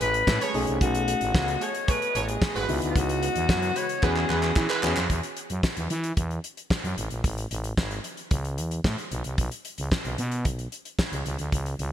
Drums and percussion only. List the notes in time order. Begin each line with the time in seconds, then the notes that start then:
0.01 closed hi-hat
0.14 closed hi-hat
0.27 kick, snare, clap
0.41 closed hi-hat
0.54 open hi-hat
0.67 closed hi-hat
0.81 kick, closed hi-hat
0.95 closed hi-hat
1.08 closed hi-hat
1.21 closed hi-hat
1.35 kick, snare, clap
1.48 closed hi-hat
1.61 closed hi-hat
1.75 closed hi-hat
1.88 kick, closed hi-hat
2.02 closed hi-hat
2.15 closed hi-hat
2.28 closed hi-hat
2.42 kick, snare, clap
2.56 closed hi-hat
2.69 open hi-hat
2.82 closed hi-hat
2.96 kick, closed hi-hat
3.09 closed hi-hat
3.23 closed hi-hat
3.36 closed hi-hat
3.49 kick, snare, clap
3.62 closed hi-hat
3.76 closed hi-hat
3.89 closed hi-hat
4.03 kick, clap
4.16 clap
4.30 clap
4.43 clap
4.56 kick, clap
4.70 clap
4.83 clap
4.97 clap
5.10 kick, closed hi-hat
5.23 closed hi-hat
5.37 closed hi-hat
5.50 closed hi-hat
5.63 kick, snare, clap
5.77 closed hi-hat
5.90 closed hi-hat
6.04 closed hi-hat
6.17 kick, closed hi-hat
6.31 closed hi-hat
6.44 closed hi-hat
6.57 closed hi-hat
6.70 kick, snare, clap
6.85 closed hi-hat
6.98 closed hi-hat
7.10 closed hi-hat
7.24 kick, closed hi-hat
7.38 closed hi-hat
7.51 closed hi-hat
7.64 closed hi-hat
7.77 kick, snare, clap
7.91 closed hi-hat
8.04 closed hi-hat
8.17 closed hi-hat
8.31 kick, closed hi-hat
8.45 closed hi-hat
8.58 closed hi-hat
8.71 closed hi-hat
8.84 kick, snare, clap
8.98 closed hi-hat
9.11 closed hi-hat
9.24 closed hi-hat
9.38 kick, closed hi-hat
9.51 closed hi-hat
9.65 closed hi-hat
9.78 closed hi-hat
9.92 kick, snare, clap
10.05 closed hi-hat
10.18 closed hi-hat
10.31 closed hi-hat
10.45 kick, closed hi-hat
10.59 closed hi-hat
10.72 closed hi-hat
10.85 closed hi-hat
10.99 kick, snare, clap
11.13 closed hi-hat
11.26 closed hi-hat
11.39 closed hi-hat
11.52 kick, closed hi-hat
11.66 closed hi-hat
11.79 closed hi-hat